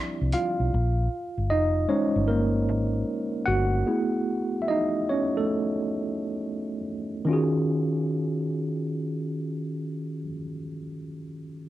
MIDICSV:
0, 0, Header, 1, 4, 480
1, 0, Start_track
1, 0, Tempo, 776197
1, 443, Time_signature, 4, 2, 24, 8
1, 1887, Tempo, 819672
1, 3327, Tempo, 875912
1, 4287, Tempo, 904977
1, 6635, End_track
2, 0, Start_track
2, 0, Title_t, "Tine electric piano"
2, 0, Program_c, 0, 4
2, 0, Control_c, 0, 64, 127
2, 0, Note_on_c, 0, 53, 48
2, 0, Note_on_c, 0, 55, 47
2, 0, Note_on_c, 0, 60, 40
2, 0, Note_on_c, 0, 62, 61
2, 0, Note_on_c, 0, 64, 53
2, 0, Note_on_c, 0, 74, 73
2, 0, Note_on_c, 0, 76, 81
2, 207, Note_on_c, 0, 77, 84
2, 211, Note_on_c, 0, 65, 72
2, 450, Control_c, 0, 64, 0
2, 451, Note_off_c, 0, 64, 0
2, 453, Note_off_c, 0, 53, 0
2, 454, Note_off_c, 0, 74, 0
2, 455, Note_off_c, 0, 55, 0
2, 455, Note_off_c, 0, 76, 0
2, 456, Note_off_c, 0, 60, 0
2, 457, Note_off_c, 0, 62, 0
2, 553, Control_c, 0, 64, 127
2, 896, Note_off_c, 0, 77, 0
2, 898, Note_off_c, 0, 65, 0
2, 928, Note_on_c, 0, 75, 87
2, 936, Note_on_c, 0, 63, 62
2, 1151, Note_off_c, 0, 63, 0
2, 1164, Note_on_c, 0, 56, 48
2, 1167, Note_on_c, 0, 73, 76
2, 1170, Note_on_c, 0, 72, 44
2, 1171, Note_off_c, 0, 75, 0
2, 1173, Note_on_c, 0, 61, 58
2, 1175, Note_on_c, 0, 63, 56
2, 1388, Note_off_c, 0, 73, 0
2, 1392, Note_off_c, 0, 61, 0
2, 1409, Note_on_c, 0, 70, 76
2, 1420, Note_on_c, 0, 58, 62
2, 1507, Note_off_c, 0, 56, 0
2, 1510, Note_off_c, 0, 72, 0
2, 1513, Note_off_c, 0, 63, 0
2, 2102, Note_off_c, 0, 70, 0
2, 2107, Note_off_c, 0, 58, 0
2, 2124, Note_on_c, 0, 78, 85
2, 2136, Note_on_c, 0, 66, 75
2, 2365, Control_c, 0, 64, 0
2, 2366, Note_on_c, 0, 68, 49
2, 2367, Note_on_c, 0, 57, 48
2, 2372, Note_on_c, 0, 59, 45
2, 2372, Note_on_c, 0, 64, 54
2, 2452, Control_c, 0, 64, 127
2, 2788, Note_off_c, 0, 66, 0
2, 2805, Note_on_c, 0, 76, 59
2, 2826, Note_off_c, 0, 78, 0
2, 2837, Note_off_c, 0, 76, 0
2, 2842, Note_on_c, 0, 75, 80
2, 2855, Note_on_c, 0, 63, 68
2, 3074, Note_off_c, 0, 63, 0
2, 3083, Note_on_c, 0, 73, 76
2, 3091, Note_off_c, 0, 75, 0
2, 3095, Note_on_c, 0, 61, 55
2, 3226, Note_off_c, 0, 73, 0
2, 3233, Note_off_c, 0, 61, 0
2, 3246, Note_on_c, 0, 69, 62
2, 3253, Note_off_c, 0, 57, 0
2, 3260, Note_on_c, 0, 57, 46
2, 4025, Note_off_c, 0, 69, 0
2, 4032, Note_off_c, 0, 57, 0
2, 4270, Note_off_c, 0, 68, 0
2, 4273, Note_off_c, 0, 59, 0
2, 4273, Note_off_c, 0, 64, 0
2, 4279, Note_on_c, 0, 51, 73
2, 4291, Note_on_c, 0, 61, 63
2, 4296, Control_c, 0, 64, 0
2, 4300, Note_on_c, 0, 65, 58
2, 4312, Note_on_c, 0, 66, 62
2, 4323, Note_on_c, 0, 68, 68
2, 4401, Control_c, 0, 64, 127
2, 5850, Note_off_c, 0, 51, 0
2, 5862, Note_off_c, 0, 61, 0
2, 5870, Note_off_c, 0, 65, 0
2, 5883, Note_off_c, 0, 66, 0
2, 5893, Note_off_c, 0, 68, 0
2, 6635, End_track
3, 0, Start_track
3, 0, Title_t, "Fingered electric bass"
3, 0, Program_c, 1, 33
3, 133, Note_on_c, 1, 36, 75
3, 204, Note_off_c, 1, 36, 0
3, 369, Note_on_c, 1, 35, 69
3, 441, Note_off_c, 1, 35, 0
3, 457, Note_on_c, 1, 34, 103
3, 661, Note_off_c, 1, 34, 0
3, 850, Note_on_c, 1, 31, 65
3, 942, Note_off_c, 1, 31, 0
3, 942, Note_on_c, 1, 29, 95
3, 1143, Note_off_c, 1, 29, 0
3, 1334, Note_on_c, 1, 31, 74
3, 1662, Note_off_c, 1, 31, 0
3, 1662, Note_on_c, 1, 32, 77
3, 1869, Note_off_c, 1, 32, 0
3, 2135, Note_on_c, 1, 31, 77
3, 2337, Note_off_c, 1, 31, 0
3, 6635, End_track
4, 0, Start_track
4, 0, Title_t, "Drums"
4, 200, Note_on_c, 9, 42, 51
4, 262, Note_off_c, 9, 42, 0
4, 6635, End_track
0, 0, End_of_file